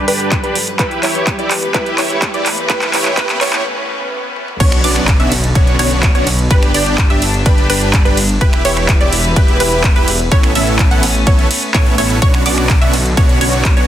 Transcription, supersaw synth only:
0.08 0.41 D4 medium
0.08 0.41 G4 medium
0.08 0.41 B4 medium
0.43 0.57 D4 medium
0.43 0.57 G4 medium
0.43 0.57 B4 medium
0.79 1.00 E4 medium
0.79 1.00 G4 medium
0.79 1.00 B4 loud
1.03 1.36 E4 medium
1.03 1.36 G4 medium
1.03 1.36 C#5 medium
1.39 1.52 E4 medium
1.39 1.52 G4 medium
1.39 1.52 D5 medium
1.74 1.95 E4 medium
1.74 1.95 G4 medium
1.74 1.95 B4 loud
1.98 2.31 E4 medium
1.98 2.31 G4 medium
1.98 2.31 C#5 medium
2.34 2.47 E4 medium
2.34 2.47 G4 medium
2.34 2.47 D5 medium
2.70 2.91 E4 loud
2.70 2.91 G4 medium
2.70 2.91 B4 loud
2.94 3.15 E4 medium
2.94 3.15 G4 medium
2.94 3.15 C#5 medium
3.17 3.38 E4 loud
3.17 3.38 G4 medium
3.17 3.38 B4 loud
3.41 3.63 E4 medium
3.41 3.63 G4 medium
3.41 3.63 C#5 medium
4.60 4.81 B3 loud
4.60 4.81 C#4 medium
4.60 4.81 D4 medium
4.60 4.81 F#4 medium
4.60 4.81 C#5 loud
4.84 5.17 B3 medium
4.84 5.17 C#4 medium
4.84 5.17 D4 medium
4.84 5.17 F#4 medium
4.84 5.17 D5 medium
5.20 5.33 B3 medium
5.20 5.33 C#4 medium
5.20 5.33 D4 medium
5.20 5.33 F#4 medium
5.20 5.33 E5 medium
5.55 5.76 B3 medium
5.55 5.76 C#4 medium
5.55 5.76 D4 medium
5.55 5.76 F#4 medium
5.55 5.76 C#5 medium
5.79 6.12 B3 medium
5.79 6.12 C#4 medium
5.79 6.12 D4 medium
5.79 6.12 F#4 medium
5.79 6.12 C#5 medium
6.15 6.28 B3 medium
6.15 6.28 C#4 medium
6.15 6.28 D4 medium
6.15 6.28 F#4 medium
6.15 6.28 C#5 medium
6.50 6.72 D4 loud
6.50 6.72 G4 medium
6.50 6.72 B4 loud
6.74 7.07 D4 medium
6.74 7.07 G4 medium
6.74 7.07 D5 medium
7.10 7.23 D4 medium
7.10 7.23 G4 medium
7.10 7.23 E5 medium
7.46 7.67 D4 medium
7.46 7.67 G4 medium
7.46 7.67 B4 medium
7.70 8.03 D4 medium
7.70 8.03 G4 medium
7.70 8.03 B4 medium
8.05 8.19 D4 medium
8.05 8.18 G4 medium
8.05 8.18 B4 medium
8.41 8.62 E4 loud
8.41 8.62 G4 medium
8.41 8.62 B4 loud
8.65 8.98 E4 medium
8.65 8.98 G4 medium
8.65 8.98 C#5 medium
9.01 9.14 E4 medium
9.01 9.14 G4 medium
9.01 9.14 D5 medium
9.36 9.57 E4 medium
9.36 9.57 G4 medium
9.36 9.57 B4 medium
9.60 9.93 E4 medium
9.60 9.93 G4 medium
9.60 9.93 B4 medium
9.96 10.09 E4 medium
9.96 10.09 G4 medium
9.96 10.09 B4 medium
10.32 10.53 B3 loud
10.32 10.53 C#4 medium
10.32 10.53 E4 medium
10.32 10.53 A4 medium
10.32 10.53 C#5 loud
10.55 10.88 B3 medium
10.55 10.88 C#4 medium
10.55 10.88 E4 medium
10.55 10.88 A4 medium
10.55 10.88 E5 medium
10.91 11.04 B3 medium
10.91 11.04 C#4 medium
10.91 11.04 E4 medium
10.91 11.04 A4 medium
10.91 11.04 F#5 medium
11.27 11.48 B3 medium
11.27 11.48 C#4 medium
11.27 11.48 E4 medium
11.27 11.48 A4 medium
11.27 11.48 C#5 medium
11.74 11.95 B3 loud
11.74 11.95 C#4 medium
11.74 11.95 E4 medium
11.74 11.95 A4 medium
11.74 11.95 C#5 loud
11.98 12.19 B3 medium
11.98 12.19 C#4 medium
11.98 12.19 E4 medium
11.98 12.19 A4 medium
11.98 12.19 C#5 medium
12.22 12.43 B3 loud
12.22 12.43 C#4 medium
12.22 12.43 D4 medium
12.22 12.43 F#4 medium
12.22 12.43 C#5 loud
12.46 12.79 B3 medium
12.46 12.79 C#4 medium
12.46 12.79 D4 medium
12.46 12.79 F#4 medium
12.46 12.79 D5 medium
12.82 12.95 B3 medium
12.82 12.95 C#4 medium
12.82 12.95 D4 medium
12.82 12.95 F#4 medium
12.82 12.95 E5 medium
13.17 13.38 B3 medium
13.17 13.38 C#4 medium
13.17 13.38 D4 medium
13.17 13.38 F#4 medium
13.17 13.38 C#5 medium
13.41 13.74 B3 medium
13.41 13.74 C#4 medium
13.41 13.74 D4 medium
13.41 13.74 F#4 medium
13.41 13.74 C#5 medium
13.77 13.87 B3 medium
13.77 13.87 C#4 medium
13.77 13.87 D4 medium
13.77 13.87 F#4 medium
13.77 13.87 C#5 medium

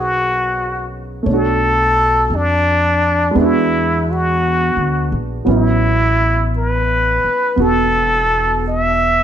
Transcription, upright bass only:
0.00 1.23 B1 medium
1.26 2.27 B1 medium
2.30 3.31 F2 soft
3.35 4.72 E2 medium
4.76 5.09 D2 soft
5.12 5.44 A#1 medium
5.46 7.20 A1 medium
7.24 muted upright bass stroke soft
7.57 9.23 E1 medium

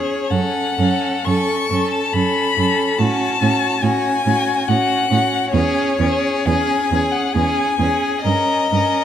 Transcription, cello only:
0.31 0.39 F#2 soft
0.79 0.87 F#2 soft
1.26 1.34 F#2 soft
1.71 1.79 F#2 soft
2.14 2.22 F#2 soft
2.57 2.65 F#2 soft
2.99 3.07 A2 soft
3.42 3.50 A2 soft
3.83 3.91 A2 soft
4.26 4.34 A2 soft
4.69 4.77 A2 soft
5.11 5.19 A2 soft
5.54 5.62 E2 soft
5.99 6.07 E2 soft
6.46 6.54 E2 soft
6.92 7.00 E2 soft
7.36 7.44 E2 soft
7.79 7.87 E2 soft
8.25 8.33 G2 soft
8.72 8.80 G2 soft

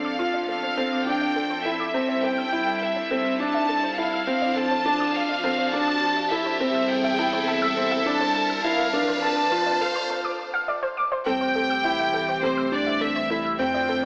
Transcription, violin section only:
0.00 0.47 F5 loud
0.48 1.03 F5 loud
1.07 1.65 G5 loud
1.65 2.23 E5 medium
2.24 2.82 G5 loud
2.82 3.40 E5 medium
3.40 3.98 A5 loud
3.98 4.57 F5 medium
4.56 5.15 A5 loud
5.15 5.73 F5 loud
5.73 6.31 A5 loud
6.31 6.90 E5 medium
6.89 7.48 G5 loud
7.48 8.06 E5 loud
8.06 8.64 A5 loud
8.64 9.19 F5 loud
9.23 9.81 A5 loud
9.81 10.10 F5 loud
11.26 12.39 G5 loud
12.43 12.72 C5 loud
12.73 13.01 D5 loud
13.02 13.45 E5 loud
13.60 14.05 G5 loud

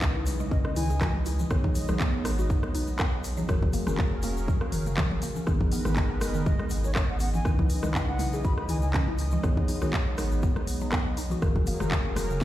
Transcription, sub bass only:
0.00 0.28 C#2 medium
0.27 0.53 B1 loud
0.52 0.61 G#1 loud
0.77 1.08 C#2 medium
1.14 1.45 C#2 medium
1.51 1.83 B1 loud
1.89 2.26 B1 medium
2.25 2.51 G#1 loud
2.50 2.59 F#1 medium
2.75 3.07 B1 medium
3.13 3.44 B1 medium
3.49 3.81 F#1 loud
3.88 4.25 F#1 medium
4.24 4.50 E1 loud
4.48 4.58 C#2 medium
4.73 5.05 F#1 medium
5.11 5.19 F#1 loud
5.47 5.79 G#1 loud
5.86 6.23 G#1 medium
6.22 6.48 F#1 loud
6.46 6.56 D#1 medium
6.71 7.03 G#1 loud
7.10 7.40 G#1 medium
7.46 7.78 C#2 loud
7.84 8.21 C#2 medium
8.20 8.46 B1 loud
8.45 8.54 G#1 medium
8.69 9.01 C#2 medium
9.08 9.39 C#2 medium
9.44 9.76 B1 loud
9.82 10.20 B1 medium
10.18 10.44 G#1 loud
10.43 10.52 F#1 medium
10.68 11.00 B1 loud
11.06 11.37 B1 medium
11.42 11.74 F#1 loud
11.81 12.19 F#1 medium
12.17 12.43 E1 loud

